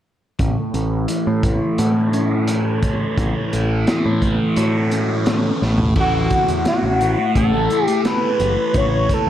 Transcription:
0.39 0.55 A1 medium
0.39 3.18 A2 medium
0.39 kick medium
0.39 closed hi-hat medium
0.74 1.05 A1 medium
0.74 1.44 A3 soft
0.74 closed hi-hat soft
1.08 3.86 E3 soft
1.08 closed hi-hat medium
1.27 1.42 A2 medium
1.43 1.59 A1 medium
1.43 2.47 A3 soft
1.43 kick medium
1.43 closed hi-hat soft
1.78 3.04 A2 medium
1.78 3.53 F#4 medium
1.78 closed hi-hat medium
2.13 2.82 C#4 soft
2.13 closed hi-hat soft
2.47 3.51 A3 medium
2.47 closed hi-hat medium
2.83 4.57 C#4 soft
2.83 kick medium
2.83 closed hi-hat medium
3.17 3.33 A1 medium
3.17 4.92 A2 medium
3.17 kick medium
3.17 closed hi-hat medium
3.52 3.84 A1 medium
3.52 4.20 A3 medium
3.52 closed hi-hat soft
3.86 5.61 E3 medium
3.86 snare medium
3.86 closed hi-hat medium
4.06 4.21 A2 medium
4.21 4.38 A1 medium
4.21 5.26 A3 medium
4.21 kick medium
4.21 closed hi-hat soft
4.56 5.51 A2 medium
4.56 5.61 F#4 medium
4.56 closed hi-hat medium
4.91 5.62 C#4 medium
4.91 closed hi-hat soft
5.26 5.62 A3 medium
5.26 snare medium
5.26 closed hi-hat medium
5.62 5.93 A1 medium
5.62 5.94 A2 medium
5.62 snare soft
5.78 floor tom medium
5.96 6.27 A1 medium
5.96 6.66 A2 medium
5.96 6.66 E3 medium
5.96 6.68 A3 medium
5.96 kick medium
5.96 crash medium
6.00 6.64 F#4 medium
6.30 kick medium
6.30 closed hi-hat medium
6.48 6.64 E2 medium
6.48 closed hi-hat medium
6.65 6.99 A2 medium
6.65 7.00 E3 medium
6.65 7.02 A3 medium
6.65 7.32 F#4 medium
6.65 snare medium
6.65 closed hi-hat medium
6.83 7.14 A1 medium
7.00 7.52 A2 medium
7.00 7.18 E3 medium
7.00 7.18 A3 medium
7.00 closed hi-hat soft
7.19 muted distorted electric guitar stroke soft
7.36 7.67 A1 medium
7.36 7.85 A4 medium
7.36 kick medium
7.36 closed hi-hat soft
7.53 7.70 E3 soft
7.53 7.71 A3 medium
7.70 8.03 A2 medium
7.70 7.86 E3 medium
7.70 7.87 A3 medium
7.70 closed hi-hat soft
7.85 8.08 G4 medium
7.85 muted distorted electric guitar stroke soft
7.85 closed hi-hat soft
8.04 8.37 A2 medium
8.04 8.21 E3 medium
8.04 8.21 A3 medium
8.04 8.79 B4 medium
8.04 snare medium
8.04 closed hi-hat medium
8.21 8.38 E3 soft
8.21 8.40 A3 medium
8.38 8.55 F#1 medium
8.38 8.71 A2 medium
8.38 8.56 E3 medium
8.38 8.55 A3 medium
8.38 closed hi-hat soft
8.56 8.72 E3 soft
8.56 8.74 A3 medium
8.73 9.06 A1 medium
8.73 9.29 A2 medium
8.73 9.29 E3 medium
8.73 9.29 A3 medium
8.73 kick medium
8.73 closed hi-hat medium
8.77 9.15 C#5 medium
9.09 kick medium
9.09 closed hi-hat soft
9.13 9.29 A4 medium

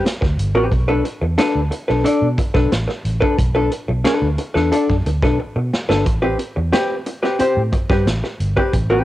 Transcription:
0.05 muted hollow-body jazz guitar stroke medium
0.05 snare loud
0.05 closed hi-hat medium
0.21 0.36 D2 medium
0.21 muted hollow-body jazz guitar stroke medium
0.21 kick medium
0.21 snare soft
0.38 0.54 G1 loud
0.38 closed hi-hat medium
0.54 0.69 A1 medium
0.54 0.71 C4 medium
0.54 0.71 G4 medium
0.54 0.71 B4 medium
0.71 1.00 B1 loud
0.71 muted hollow-body jazz guitar stroke soft
0.71 kick loud
0.71 closed hi-hat medium
0.88 1.04 D4 medium
0.88 1.04 A4 medium
0.88 1.04 B4 medium
1.05 muted hollow-body jazz guitar stroke medium
1.05 closed hi-hat medium
1.22 1.36 E2 medium
1.22 muted hollow-body jazz guitar stroke medium
1.38 1.59 D4 loud
1.38 1.59 A4 medium
1.38 1.60 B4 loud
1.38 snare loud
1.38 closed hi-hat medium
1.55 1.70 D2 medium
1.71 muted hollow-body jazz guitar stroke soft
1.71 closed hi-hat medium
1.88 2.04 B1 medium
1.88 2.03 D4 medium
1.88 2.03 A4 medium
1.88 2.05 B4 medium
1.88 snare soft
2.04 2.26 D4 medium
2.04 2.26 A4 medium
2.04 2.26 D5 loud
2.04 muted fingered electric bass stroke soft
2.04 closed hi-hat medium
2.22 2.36 B2 medium
2.38 muted hollow-body jazz guitar stroke soft
2.38 kick loud
2.38 closed hi-hat medium
2.54 2.69 B1 loud
2.54 2.71 D4 medium
2.54 2.71 A4 medium
2.54 2.71 B4 medium
2.54 kick loud
2.54 snare soft
2.72 2.86 A1 medium
2.72 muted hollow-body jazz guitar stroke soft
2.72 snare loud
2.72 closed hi-hat medium
2.88 muted hollow-body jazz guitar stroke medium
2.88 snare soft
3.05 3.20 A1 medium
3.05 closed hi-hat medium
3.21 3.37 D4 medium
3.21 3.37 A4 medium
3.21 3.37 B4 medium
3.21 kick loud
3.38 3.68 B1 loud
3.38 muted hollow-body jazz guitar stroke medium
3.38 kick loud
3.38 closed hi-hat medium
3.55 3.70 D4 medium
3.55 3.71 A4 medium
3.55 3.71 B4 medium
3.71 muted hollow-body jazz guitar stroke soft
3.71 closed hi-hat medium
3.88 4.03 B1 medium
3.88 muted hollow-body jazz guitar stroke soft
4.04 4.26 D4 medium
4.04 4.26 A4 medium
4.04 4.27 B4 loud
4.04 snare loud
4.04 closed hi-hat medium
4.22 4.36 D2 loud
4.38 muted hollow-body jazz guitar stroke soft
4.38 closed hi-hat medium
4.54 4.70 E2 medium
4.54 4.70 D4 medium
4.54 4.70 A4 medium
4.54 4.71 B4 medium
4.54 snare soft
4.72 4.93 D4 medium
4.72 4.93 A4 medium
4.72 4.94 D5 medium
4.72 closed hi-hat medium
4.89 5.04 F#2 medium
4.89 kick medium
4.89 snare soft
5.06 5.20 D2 loud
5.06 muted hollow-body jazz guitar stroke soft
5.06 closed hi-hat medium
5.22 5.37 B1 medium
5.22 5.38 D4 medium
5.22 5.38 A4 medium
5.22 5.39 B4 medium
5.22 kick loud
5.22 snare soft
5.39 muted hollow-body jazz guitar stroke soft
5.56 5.70 B2 medium
5.56 muted hollow-body jazz guitar stroke soft
5.73 snare loud
5.89 6.06 G1 loud
5.89 6.05 D4 medium
5.89 6.06 A4 medium
5.89 6.06 B4 medium
5.89 snare medium
6.06 6.35 A1 loud
6.06 muted hollow-body jazz guitar stroke soft
6.06 kick loud
6.06 closed hi-hat medium
6.22 6.38 C4 medium
6.22 6.39 G4 medium
6.22 6.38 B4 medium
6.39 muted hollow-body jazz guitar stroke soft
6.39 closed hi-hat medium
6.56 6.71 E2 loud
6.56 muted hollow-body jazz guitar stroke medium
6.73 6.94 C4 medium
6.73 6.94 G4 loud
6.73 6.94 B4 loud
6.73 snare loud
6.73 closed hi-hat medium
7.06 muted hollow-body jazz guitar stroke soft
7.06 closed hi-hat medium
7.23 7.38 C4 medium
7.23 7.39 G4 medium
7.23 7.40 B4 medium
7.23 snare soft
7.39 7.61 C4 medium
7.39 7.61 G4 loud
7.39 7.61 C5 loud
7.39 muted fingered electric bass stroke soft
7.39 closed hi-hat medium
7.57 7.71 A2 medium
7.72 muted hollow-body jazz guitar stroke soft
7.72 kick loud
7.72 closed hi-hat medium
7.90 8.05 G2 medium
7.90 8.06 C4 medium
7.90 8.06 G4 medium
7.90 8.07 B4 medium
7.90 kick loud
7.90 snare soft
8.06 8.21 A1 medium
8.06 muted hollow-body jazz guitar stroke soft
8.06 snare loud
8.06 closed hi-hat loud
8.24 muted hollow-body jazz guitar stroke medium
8.24 snare soft
8.40 8.55 G1 loud
8.40 closed hi-hat medium
8.57 8.72 C4 medium
8.57 8.73 G4 medium
8.57 8.73 B4 medium
8.57 kick medium
8.73 9.03 A1 loud
8.73 muted hollow-body jazz guitar stroke soft
8.73 kick loud
8.73 closed hi-hat medium
8.90 9.04 C4 medium
8.90 9.04 G4 medium
8.90 9.04 B4 medium

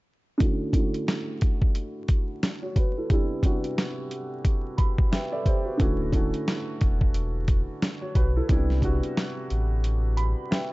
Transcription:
0.38 0.68 D3 medium
0.38 0.69 A3 medium
0.38 0.70 C#4 medium
0.38 0.70 E4 medium
0.38 kick loud
0.38 closed hi-hat medium
0.42 0.71 F#4 medium
0.73 1.89 D3 medium
0.73 1.90 A3 medium
0.73 1.90 C#4 medium
0.73 1.91 E4 medium
0.73 kick medium
0.73 closed hi-hat medium
0.77 1.91 F#4 medium
0.94 closed hi-hat medium
1.08 snare loud
1.08 closed hi-hat medium
1.41 kick medium
1.41 closed hi-hat medium
1.62 kick medium
1.75 closed hi-hat medium
2.08 kick medium
2.08 closed hi-hat medium
2.43 snare loud
2.43 closed hi-hat medium
2.62 2.75 F#4 medium
2.62 2.75 C#5 medium
2.76 2.96 F#4 medium
2.76 2.96 B4 medium
2.76 kick medium
2.76 closed hi-hat medium
2.97 3.12 E4 medium
2.97 3.29 A4 medium
3.09 3.39 C3 medium
3.09 3.40 G3 medium
3.09 3.40 B3 medium
3.09 3.41 D4 medium
3.09 kick loud
3.09 closed hi-hat medium
3.13 3.41 E4 medium
3.41 4.58 C3 medium
3.41 4.59 G3 medium
3.41 4.59 B3 medium
3.41 4.60 D4 medium
3.41 kick medium
3.41 closed hi-hat medium
3.45 4.60 F#4 medium
3.64 closed hi-hat soft
3.78 snare loud
3.78 closed hi-hat medium
4.11 closed hi-hat medium
4.45 kick medium
4.45 closed hi-hat medium
4.78 5.09 B5 medium
4.78 kick medium
4.78 closed hi-hat medium
4.98 kick medium
5.12 5.32 B4 medium
5.12 5.31 E5 medium
5.12 5.31 G5 medium
5.12 snare loud
5.12 closed hi-hat medium
5.32 5.45 A4 medium
5.32 5.45 D5 medium
5.32 5.76 E5 medium
5.46 5.66 G4 medium
5.46 5.65 C5 medium
5.46 kick medium
5.46 closed hi-hat medium
5.64 5.80 F#4 medium
5.64 5.97 B4 medium
5.77 6.31 D1 loud
5.77 6.08 D3 medium
5.77 6.09 A3 medium
5.77 6.09 C#4 medium
5.77 6.10 E4 medium
5.77 kick loud
5.77 closed hi-hat medium
5.82 6.10 F#4 medium
6.12 7.29 D3 medium
6.12 7.29 A3 medium
6.12 7.30 C#4 medium
6.12 7.30 E4 medium
6.12 kick medium
6.12 closed hi-hat medium
6.16 7.31 F#4 medium
6.34 closed hi-hat medium
6.48 snare loud
6.48 closed hi-hat medium
6.81 7.65 E1 medium
6.81 kick medium
6.81 closed hi-hat medium
7.01 kick medium
7.14 closed hi-hat medium
7.48 kick medium
7.48 closed hi-hat medium
7.82 snare loud
7.82 closed hi-hat medium
8.01 8.15 F#4 medium
8.01 8.14 C#5 medium
8.15 8.41 B1 medium
8.15 8.35 F#4 medium
8.15 8.35 B4 medium
8.15 kick medium
8.15 closed hi-hat medium
8.36 8.51 E4 medium
8.36 8.68 A4 medium
8.48 9.00 C2 loud
8.48 8.78 C3 medium
8.48 8.79 G3 medium
8.48 8.79 B3 medium
8.48 8.80 D4 medium
8.48 kick loud
8.48 closed hi-hat medium
8.52 8.80 E4 medium
8.70 snare soft
8.80 9.97 C3 medium
8.80 9.98 G3 medium
8.80 9.98 B3 medium
8.80 9.99 D4 medium
8.80 kick medium
8.80 closed hi-hat medium
8.84 10.00 F#4 medium
9.03 closed hi-hat medium
9.17 snare loud
9.17 closed hi-hat medium
9.50 10.34 A1 medium
9.50 closed hi-hat medium
9.84 closed hi-hat medium
10.17 10.49 B5 medium
10.17 closed hi-hat medium
10.51 10.71 B4 medium
10.51 10.70 E5 medium
10.51 10.70 G5 medium
10.51 snare loud
10.51 closed hi-hat medium

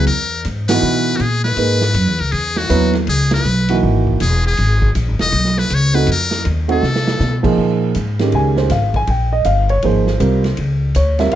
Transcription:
0.07 0.44 E2 medium
0.07 0.42 A#4 loud
0.07 ride medium
0.44 0.82 G#2 medium
0.44 hi-hat pedal medium
0.44 ride medium
0.68 1.18 E3 medium
0.68 1.18 B3 medium
0.68 1.18 D#4 medium
0.68 1.18 F#4 medium
0.68 1.18 B4 loud
0.68 snare medium
0.68 ride medium
0.83 1.18 B2 medium
1.16 1.56 A#2 medium
1.16 1.23 F#4 medium
1.16 hi-hat pedal medium
1.16 ride medium
1.21 1.43 G#4 medium
1.44 2.22 B4 medium
1.44 snare medium
1.56 1.94 G#2 medium
1.56 1.80 A#3 medium
1.56 1.79 D#4 medium
1.56 1.80 G#4 medium
1.56 1.80 B4 medium
1.56 ride medium
1.81 snare medium
1.94 2.07 F#2 medium
1.94 hi-hat pedal soft
1.94 ride medium
2.07 2.20 E2 medium
2.19 2.32 C#2 medium
2.19 2.33 A#4 medium
2.19 ride medium
2.32 2.69 E2 medium
2.32 2.59 G#4 medium
2.32 ride medium
2.56 2.95 F#4 medium
2.56 snare medium
2.69 3.07 D#2 medium
2.69 2.92 F#3 medium
2.69 2.92 B3 medium
2.69 2.92 E4 medium
2.69 2.92 B4 medium
2.69 hi-hat pedal medium
2.69 ride medium
2.93 snare soft
2.93 ride soft
3.07 3.44 C#2 medium
3.07 3.31 G#4 medium
3.07 ride medium
3.31 3.80 B4 medium
3.31 snare medium
3.31 ride medium
3.44 3.81 B1 medium
3.44 hi-hat pedal soft
3.68 4.18 E3 medium
3.68 4.18 A#3 medium
3.68 4.18 D#4 medium
3.68 4.18 F#4 medium
3.68 ride medium
3.83 4.19 G#1 medium
4.07 kick soft
4.20 4.57 E1 medium
4.20 4.44 G#4 medium
4.20 hi-hat pedal medium
4.20 ride medium
4.44 4.93 G#4 medium
4.44 ride soft
4.57 4.95 G#1 medium
4.57 ride medium
4.82 kick medium
4.95 5.08 A#1 medium
4.95 hi-hat pedal medium
4.95 ride medium
5.08 5.20 G#1 medium
5.19 5.32 E1 medium
5.19 5.60 D#5 loud
5.19 snare medium
5.19 ride soft
5.32 5.69 B1 medium
5.32 ride medium
5.45 snare soft
5.58 5.76 B4 medium
5.58 snare soft
5.70 6.07 C#2 medium
5.70 hi-hat pedal medium
5.70 ride medium
5.74 5.96 C#5 loud
5.93 6.06 A3 medium
5.93 6.06 C4 medium
5.93 6.06 D#4 medium
5.93 6.07 F#4 medium
5.93 6.08 B4 medium
5.93 ride soft
6.07 6.44 F2 medium
6.07 ride medium
6.12 6.45 A#4 loud
6.31 snare medium
6.45 6.82 D#2 medium
6.45 hi-hat pedal medium
6.45 ride medium
6.68 6.81 A3 medium
6.68 6.81 C4 medium
6.68 6.81 D#4 medium
6.68 6.81 F#4 medium
6.68 7.42 A4 medium
6.68 ride soft
6.82 7.19 C3 medium
6.82 snare soft
6.96 snare medium
7.07 snare medium
7.20 7.57 B2 loud
7.20 snare medium
7.20 hi-hat pedal soft
7.43 7.92 F3 medium
7.43 7.92 A#3 medium
7.43 7.92 D#4 medium
7.43 7.92 G#4 medium
7.43 kick medium
7.43 crash medium
7.58 7.94 A#2 medium
7.95 8.32 G#2 medium
7.95 hi-hat pedal medium
7.95 ride medium
8.19 8.68 D#3 medium
8.19 8.68 G#3 medium
8.19 8.68 C#4 medium
8.19 8.68 G4 medium
8.19 snare medium
8.19 ride medium
8.32 8.69 C#2 medium
8.32 8.57 G#5 medium
8.32 ride medium
8.56 8.71 C5 medium
8.56 snare soft
8.70 9.07 G#1 medium
8.70 8.95 F5 medium
8.70 snare soft
8.70 hi-hat pedal medium
8.70 ride medium
8.94 9.08 G#5 loud
8.94 kick soft
8.94 ride soft
9.07 9.44 A#1 medium
9.07 9.32 G5 medium
9.07 ride medium
9.33 9.45 D#5 medium
9.44 9.82 G1 medium
9.44 9.69 F5 medium
9.44 hi-hat pedal medium
9.44 ride medium
9.69 9.83 C#5 medium
9.69 ride soft
9.82 10.19 G#1 medium
9.82 10.05 F3 medium
9.82 10.05 A#3 medium
9.82 10.05 D#4 medium
9.82 10.05 G#4 medium
9.82 10.55 C5 medium
9.82 ride medium
10.07 snare soft
10.20 10.57 C2 loud
10.20 10.42 G3 medium
10.20 10.42 C4 medium
10.20 10.42 F4 medium
10.20 10.42 A#4 medium
10.20 hi-hat pedal medium
10.20 ride medium
10.44 snare soft
10.44 ride soft
10.57 10.95 C#2 medium
10.57 ride medium
10.95 11.32 D2 medium
10.95 11.19 C#5 medium
10.95 hi-hat pedal medium
10.95 ride medium
11.19 11.35 G3 medium
11.19 11.35 C4 medium
11.19 11.35 F4 medium
11.19 11.35 A#4 medium
11.19 11.33 E5 medium
11.19 snare medium
11.19 ride soft
11.31 ride medium

